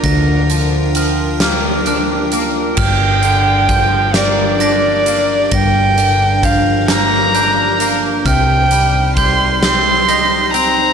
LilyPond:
<<
  \new Staff \with { instrumentName = "Glockenspiel" } { \time 6/8 \key g \minor \tempo 4. = 44 bes'''4 f'''4 f'''4 | f'''4 g'''4 bes'''4 | bes'''4 g'''4 g'''4 | f'''4 g'''4 bes'''4 | }
  \new Staff \with { instrumentName = "Violin" } { \time 6/8 \key g \minor r2. | g''4. d''4. | g''4 f''8 bes''4 r8 | g''4 c'''8 c'''4 bes''8 | }
  \new Staff \with { instrumentName = "Ambient pad" } { \time 6/8 \key g \minor << { <d' bes' g''>2. | <d' bes' f''>2.~ | <d' bes' f''>2. | <ees' c'' g''>2. | } \\ { f'2. | g'2.~ | g'2.~ | g'2. | } >> }
  \new Staff \with { instrumentName = "Clean electric guitar" } { \time 6/8 \key g \minor <d f bes d'>8 f8 f8 bes8 d'8 bes8 | g,8 d8 f8 bes8 d'8 bes8 | g,8 d8 f8 bes8 d'8 bes8 | c8 g8 g8 c'8 ees'8 c'8 | }
  \new Staff \with { instrumentName = "Picked electric bass" } { \clef bass \time 6/8 \key g \minor d,2. | g,,2. | g,,2. | c,2. | }
  \new DrumStaff \with { instrumentName = "Drums" } \drummode { \time 6/8 <hh bd>8 hh8 hh8 <hh sn>8 hh8 hh8 | <cymc bd>8 hh8 <hh bd>8 <hh sn>8 hh8 hh8 | <hh bd>8 hh8 <hh bd>8 <hh sn>8 hh8 hh8 | <hh bd>8 hh8 <hh bd>8 <hh sn>8 hh8 hh8 | }
>>